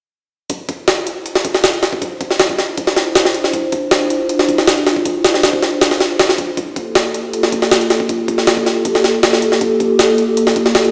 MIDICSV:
0, 0, Header, 1, 3, 480
1, 0, Start_track
1, 0, Key_signature, -1, "minor"
1, 0, Tempo, 379747
1, 629, Time_signature, 4, 2, 24, 8
1, 13794, End_track
2, 0, Start_track
2, 0, Title_t, "Ambient pad"
2, 0, Program_c, 0, 92
2, 623, Note_on_c, 0, 64, 70
2, 625, Note_on_c, 0, 62, 75
2, 625, Note_on_c, 0, 65, 69
2, 627, Note_on_c, 0, 72, 85
2, 8255, Note_off_c, 0, 64, 0
2, 8256, Note_off_c, 0, 62, 0
2, 8258, Note_off_c, 0, 72, 0
2, 8303, Note_on_c, 0, 58, 79
2, 8305, Note_on_c, 0, 67, 72
2, 8305, Note_on_c, 0, 69, 86
2, 13794, Note_off_c, 0, 58, 0
2, 13794, Note_off_c, 0, 65, 0
2, 13794, Note_off_c, 0, 67, 0
2, 13794, Note_off_c, 0, 69, 0
2, 13794, End_track
3, 0, Start_track
3, 0, Title_t, "Drums"
3, 628, Note_on_c, 9, 36, 95
3, 628, Note_on_c, 9, 42, 75
3, 754, Note_off_c, 9, 36, 0
3, 754, Note_off_c, 9, 42, 0
3, 868, Note_on_c, 9, 36, 81
3, 868, Note_on_c, 9, 42, 58
3, 995, Note_off_c, 9, 36, 0
3, 995, Note_off_c, 9, 42, 0
3, 1108, Note_on_c, 9, 38, 98
3, 1108, Note_on_c, 9, 42, 75
3, 1235, Note_off_c, 9, 38, 0
3, 1235, Note_off_c, 9, 42, 0
3, 1349, Note_on_c, 9, 42, 60
3, 1475, Note_off_c, 9, 42, 0
3, 1588, Note_on_c, 9, 42, 77
3, 1712, Note_on_c, 9, 38, 52
3, 1715, Note_off_c, 9, 42, 0
3, 1828, Note_on_c, 9, 42, 62
3, 1829, Note_on_c, 9, 36, 84
3, 1838, Note_off_c, 9, 38, 0
3, 1953, Note_on_c, 9, 38, 43
3, 1954, Note_off_c, 9, 42, 0
3, 1955, Note_off_c, 9, 36, 0
3, 2069, Note_off_c, 9, 38, 0
3, 2069, Note_on_c, 9, 38, 101
3, 2069, Note_on_c, 9, 42, 80
3, 2193, Note_off_c, 9, 42, 0
3, 2193, Note_on_c, 9, 42, 40
3, 2196, Note_off_c, 9, 38, 0
3, 2309, Note_off_c, 9, 42, 0
3, 2309, Note_on_c, 9, 38, 48
3, 2309, Note_on_c, 9, 42, 62
3, 2434, Note_on_c, 9, 36, 83
3, 2435, Note_off_c, 9, 38, 0
3, 2435, Note_off_c, 9, 42, 0
3, 2550, Note_off_c, 9, 36, 0
3, 2550, Note_on_c, 9, 36, 91
3, 2550, Note_on_c, 9, 42, 73
3, 2676, Note_off_c, 9, 36, 0
3, 2677, Note_off_c, 9, 42, 0
3, 2789, Note_on_c, 9, 42, 61
3, 2790, Note_on_c, 9, 36, 81
3, 2914, Note_on_c, 9, 38, 33
3, 2915, Note_off_c, 9, 42, 0
3, 2916, Note_off_c, 9, 36, 0
3, 3028, Note_off_c, 9, 38, 0
3, 3028, Note_on_c, 9, 38, 102
3, 3028, Note_on_c, 9, 42, 77
3, 3153, Note_on_c, 9, 36, 86
3, 3154, Note_off_c, 9, 38, 0
3, 3154, Note_off_c, 9, 42, 0
3, 3268, Note_on_c, 9, 38, 35
3, 3268, Note_on_c, 9, 42, 60
3, 3279, Note_off_c, 9, 36, 0
3, 3394, Note_off_c, 9, 38, 0
3, 3394, Note_off_c, 9, 42, 0
3, 3508, Note_on_c, 9, 42, 76
3, 3509, Note_on_c, 9, 36, 95
3, 3631, Note_on_c, 9, 38, 48
3, 3634, Note_off_c, 9, 42, 0
3, 3635, Note_off_c, 9, 36, 0
3, 3747, Note_off_c, 9, 38, 0
3, 3747, Note_on_c, 9, 38, 41
3, 3747, Note_on_c, 9, 42, 63
3, 3874, Note_off_c, 9, 38, 0
3, 3874, Note_off_c, 9, 42, 0
3, 3987, Note_on_c, 9, 38, 102
3, 3987, Note_on_c, 9, 42, 80
3, 4112, Note_off_c, 9, 38, 0
3, 4112, Note_on_c, 9, 38, 41
3, 4113, Note_off_c, 9, 42, 0
3, 4228, Note_on_c, 9, 42, 64
3, 4239, Note_off_c, 9, 38, 0
3, 4350, Note_on_c, 9, 38, 35
3, 4354, Note_off_c, 9, 42, 0
3, 4467, Note_on_c, 9, 42, 74
3, 4468, Note_on_c, 9, 36, 94
3, 4476, Note_off_c, 9, 38, 0
3, 4593, Note_off_c, 9, 42, 0
3, 4595, Note_off_c, 9, 36, 0
3, 4706, Note_on_c, 9, 42, 58
3, 4708, Note_on_c, 9, 36, 83
3, 4832, Note_off_c, 9, 42, 0
3, 4835, Note_off_c, 9, 36, 0
3, 4946, Note_on_c, 9, 38, 100
3, 4946, Note_on_c, 9, 42, 76
3, 5072, Note_off_c, 9, 38, 0
3, 5072, Note_off_c, 9, 42, 0
3, 5186, Note_on_c, 9, 42, 60
3, 5313, Note_off_c, 9, 42, 0
3, 5427, Note_on_c, 9, 42, 78
3, 5553, Note_off_c, 9, 42, 0
3, 5553, Note_on_c, 9, 38, 52
3, 5669, Note_on_c, 9, 36, 88
3, 5669, Note_on_c, 9, 42, 63
3, 5679, Note_off_c, 9, 38, 0
3, 5794, Note_on_c, 9, 38, 45
3, 5796, Note_off_c, 9, 36, 0
3, 5796, Note_off_c, 9, 42, 0
3, 5909, Note_off_c, 9, 38, 0
3, 5909, Note_on_c, 9, 38, 106
3, 5909, Note_on_c, 9, 42, 78
3, 6035, Note_off_c, 9, 38, 0
3, 6035, Note_off_c, 9, 42, 0
3, 6035, Note_on_c, 9, 42, 40
3, 6150, Note_off_c, 9, 42, 0
3, 6150, Note_on_c, 9, 38, 50
3, 6150, Note_on_c, 9, 42, 62
3, 6273, Note_on_c, 9, 36, 82
3, 6276, Note_off_c, 9, 38, 0
3, 6276, Note_off_c, 9, 42, 0
3, 6389, Note_off_c, 9, 36, 0
3, 6389, Note_on_c, 9, 36, 95
3, 6389, Note_on_c, 9, 42, 75
3, 6516, Note_off_c, 9, 36, 0
3, 6516, Note_off_c, 9, 42, 0
3, 6629, Note_on_c, 9, 38, 94
3, 6629, Note_on_c, 9, 42, 69
3, 6753, Note_off_c, 9, 38, 0
3, 6753, Note_on_c, 9, 38, 36
3, 6755, Note_off_c, 9, 42, 0
3, 6869, Note_off_c, 9, 38, 0
3, 6869, Note_on_c, 9, 38, 95
3, 6869, Note_on_c, 9, 42, 68
3, 6993, Note_on_c, 9, 36, 82
3, 6995, Note_off_c, 9, 38, 0
3, 6995, Note_off_c, 9, 42, 0
3, 7110, Note_on_c, 9, 38, 35
3, 7110, Note_on_c, 9, 42, 60
3, 7119, Note_off_c, 9, 36, 0
3, 7236, Note_off_c, 9, 38, 0
3, 7236, Note_off_c, 9, 42, 0
3, 7349, Note_on_c, 9, 38, 93
3, 7349, Note_on_c, 9, 42, 69
3, 7474, Note_off_c, 9, 38, 0
3, 7474, Note_on_c, 9, 38, 47
3, 7475, Note_off_c, 9, 42, 0
3, 7590, Note_off_c, 9, 38, 0
3, 7590, Note_on_c, 9, 38, 41
3, 7590, Note_on_c, 9, 42, 61
3, 7716, Note_off_c, 9, 38, 0
3, 7716, Note_off_c, 9, 42, 0
3, 7830, Note_on_c, 9, 38, 106
3, 7830, Note_on_c, 9, 42, 76
3, 7953, Note_off_c, 9, 38, 0
3, 7953, Note_on_c, 9, 38, 42
3, 7956, Note_off_c, 9, 42, 0
3, 8068, Note_on_c, 9, 42, 70
3, 8069, Note_on_c, 9, 36, 88
3, 8079, Note_off_c, 9, 38, 0
3, 8195, Note_off_c, 9, 36, 0
3, 8195, Note_off_c, 9, 42, 0
3, 8308, Note_on_c, 9, 42, 74
3, 8309, Note_on_c, 9, 36, 96
3, 8435, Note_off_c, 9, 36, 0
3, 8435, Note_off_c, 9, 42, 0
3, 8548, Note_on_c, 9, 42, 60
3, 8549, Note_on_c, 9, 36, 83
3, 8675, Note_off_c, 9, 36, 0
3, 8675, Note_off_c, 9, 42, 0
3, 8789, Note_on_c, 9, 38, 102
3, 8789, Note_on_c, 9, 42, 76
3, 8916, Note_off_c, 9, 38, 0
3, 8916, Note_off_c, 9, 42, 0
3, 9030, Note_on_c, 9, 42, 59
3, 9157, Note_off_c, 9, 42, 0
3, 9271, Note_on_c, 9, 42, 76
3, 9395, Note_on_c, 9, 38, 52
3, 9397, Note_off_c, 9, 42, 0
3, 9510, Note_on_c, 9, 36, 85
3, 9510, Note_on_c, 9, 42, 61
3, 9521, Note_off_c, 9, 38, 0
3, 9635, Note_on_c, 9, 38, 45
3, 9636, Note_off_c, 9, 36, 0
3, 9636, Note_off_c, 9, 42, 0
3, 9751, Note_off_c, 9, 38, 0
3, 9751, Note_on_c, 9, 38, 106
3, 9751, Note_on_c, 9, 42, 80
3, 9874, Note_off_c, 9, 42, 0
3, 9874, Note_on_c, 9, 42, 40
3, 9877, Note_off_c, 9, 38, 0
3, 9989, Note_off_c, 9, 42, 0
3, 9989, Note_on_c, 9, 38, 50
3, 9989, Note_on_c, 9, 42, 62
3, 10113, Note_on_c, 9, 36, 81
3, 10116, Note_off_c, 9, 38, 0
3, 10116, Note_off_c, 9, 42, 0
3, 10229, Note_off_c, 9, 36, 0
3, 10229, Note_on_c, 9, 36, 93
3, 10229, Note_on_c, 9, 42, 73
3, 10355, Note_off_c, 9, 42, 0
3, 10356, Note_off_c, 9, 36, 0
3, 10469, Note_on_c, 9, 36, 84
3, 10469, Note_on_c, 9, 42, 61
3, 10593, Note_on_c, 9, 38, 34
3, 10596, Note_off_c, 9, 36, 0
3, 10596, Note_off_c, 9, 42, 0
3, 10709, Note_off_c, 9, 38, 0
3, 10709, Note_on_c, 9, 38, 103
3, 10709, Note_on_c, 9, 42, 77
3, 10833, Note_on_c, 9, 36, 84
3, 10835, Note_off_c, 9, 38, 0
3, 10835, Note_off_c, 9, 42, 0
3, 10951, Note_on_c, 9, 38, 34
3, 10951, Note_on_c, 9, 42, 61
3, 10959, Note_off_c, 9, 36, 0
3, 11077, Note_off_c, 9, 38, 0
3, 11077, Note_off_c, 9, 42, 0
3, 11187, Note_on_c, 9, 42, 76
3, 11188, Note_on_c, 9, 36, 100
3, 11314, Note_off_c, 9, 42, 0
3, 11314, Note_on_c, 9, 38, 48
3, 11315, Note_off_c, 9, 36, 0
3, 11430, Note_off_c, 9, 38, 0
3, 11430, Note_on_c, 9, 38, 41
3, 11430, Note_on_c, 9, 42, 63
3, 11556, Note_off_c, 9, 38, 0
3, 11556, Note_off_c, 9, 42, 0
3, 11668, Note_on_c, 9, 38, 105
3, 11668, Note_on_c, 9, 42, 82
3, 11795, Note_off_c, 9, 38, 0
3, 11795, Note_off_c, 9, 42, 0
3, 11795, Note_on_c, 9, 38, 41
3, 11910, Note_on_c, 9, 42, 62
3, 11921, Note_off_c, 9, 38, 0
3, 12033, Note_on_c, 9, 38, 36
3, 12036, Note_off_c, 9, 42, 0
3, 12149, Note_on_c, 9, 36, 92
3, 12149, Note_on_c, 9, 42, 76
3, 12159, Note_off_c, 9, 38, 0
3, 12275, Note_off_c, 9, 36, 0
3, 12275, Note_off_c, 9, 42, 0
3, 12389, Note_on_c, 9, 36, 85
3, 12389, Note_on_c, 9, 42, 61
3, 12515, Note_off_c, 9, 36, 0
3, 12515, Note_off_c, 9, 42, 0
3, 12629, Note_on_c, 9, 38, 104
3, 12629, Note_on_c, 9, 42, 77
3, 12756, Note_off_c, 9, 38, 0
3, 12756, Note_off_c, 9, 42, 0
3, 12870, Note_on_c, 9, 42, 62
3, 12996, Note_off_c, 9, 42, 0
3, 13109, Note_on_c, 9, 42, 80
3, 13232, Note_on_c, 9, 38, 52
3, 13235, Note_off_c, 9, 42, 0
3, 13348, Note_on_c, 9, 42, 61
3, 13349, Note_on_c, 9, 36, 88
3, 13359, Note_off_c, 9, 38, 0
3, 13471, Note_on_c, 9, 38, 45
3, 13475, Note_off_c, 9, 36, 0
3, 13475, Note_off_c, 9, 42, 0
3, 13587, Note_off_c, 9, 38, 0
3, 13587, Note_on_c, 9, 38, 105
3, 13587, Note_on_c, 9, 42, 82
3, 13711, Note_off_c, 9, 42, 0
3, 13711, Note_on_c, 9, 42, 40
3, 13713, Note_off_c, 9, 38, 0
3, 13794, Note_off_c, 9, 42, 0
3, 13794, End_track
0, 0, End_of_file